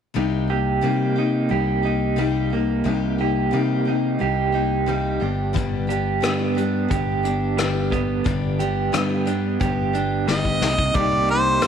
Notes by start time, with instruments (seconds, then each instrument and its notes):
0.14 fingered electric bass C2, steel-string acoustic guitar C3 G3 A#3 D#4 G4
0.48 steel-string acoustic guitar A#3 D#4 G4
0.81 steel-string acoustic guitar C3 G3 A#3 D#4 G4, fingered electric bass C3
1.16 steel-string acoustic guitar A#3 D#4 G4
1.49 fingered electric bass C2, steel-string acoustic guitar G3 A#3 D#4 G4
1.83 steel-string acoustic guitar A#3 D#4 G4
2.16 steel-string acoustic guitar C3 G3 A#3 D#4 G4
2.50 steel-string acoustic guitar A#3 D#4 G4
2.84 fingered electric bass C2, steel-string acoustic guitar C3 G3 A#3 D#4 G4
3.18 steel-string acoustic guitar A#3 D#4 G4
3.51 steel-string acoustic guitar C3 G3 A#3 D#4 G4, fingered electric bass C3
3.85 steel-string acoustic guitar A#3 D#4 G4
4.19 fingered electric bass C2, steel-string acoustic guitar G3 A#3 D#4 G4
4.52 steel-string acoustic guitar A#3 D#4 G4
4.86 steel-string acoustic guitar C3 G3 A#3 D#4 G4
5.20 fingered electric bass G1, clean electric guitar G2, steel-string acoustic guitar G3 B3 D4 G4
5.53 steel-string acoustic guitar G2 D3 G3 B3 D4 G4, kick, closed hi-hat
5.87 steel-string acoustic guitar G3 B3 D4 G4, closed hi-hat
6.21 steel-string acoustic guitar G2 D3 G3 B3 D4 G4, fingered electric bass G2, cross-stick, closed hi-hat
6.55 steel-string acoustic guitar B3 D4 G4, closed hi-hat
6.59 steel-string acoustic guitar G3
6.88 fingered electric bass G1, steel-string acoustic guitar G3 B3 D4 G4, kick, closed hi-hat
7.23 steel-string acoustic guitar G3 B3 D4 G4, closed hi-hat
7.58 steel-string acoustic guitar G2 D3 G3 B3 D4 G4, cross-stick, closed hi-hat
7.90 steel-string acoustic guitar B3 D4 G4, kick, closed hi-hat
7.94 steel-string acoustic guitar G3
8.24 fingered electric bass G1, steel-string acoustic guitar G2 D3 G3 B3 D4 G4, kick, closed hi-hat
8.59 steel-string acoustic guitar G3 B3 D4 G4, closed hi-hat
8.92 steel-string acoustic guitar G2 D3 G3 B3 D4 G4, fingered electric bass G2, cross-stick, closed hi-hat
9.25 steel-string acoustic guitar G3 B3 D4 G4, closed hi-hat
9.60 fingered electric bass G1, steel-string acoustic guitar G3 B3 D4 G4, kick, closed hi-hat
9.93 steel-string acoustic guitar G3 B3 D4 G4, closed hi-hat
10.28 steel-string acoustic guitar G2 D3 G3 B3 G4, harmonica D#5, snare
10.45 kick
10.60 fingered electric bass C2, clean electric guitar C3, steel-string acoustic guitar A#3 D#4 G4, snare
10.78 kick
10.94 fingered electric bass C2, steel-string acoustic guitar C3 G3 A#3 D#4 G4, harmonica D5, kick, closed hi-hat
11.28 steel-string acoustic guitar D#4 G4, harmonica C5, closed hi-hat
11.33 steel-string acoustic guitar A#3
11.61 fingered electric bass G2, steel-string acoustic guitar C3 G3, cross-stick, closed hi-hat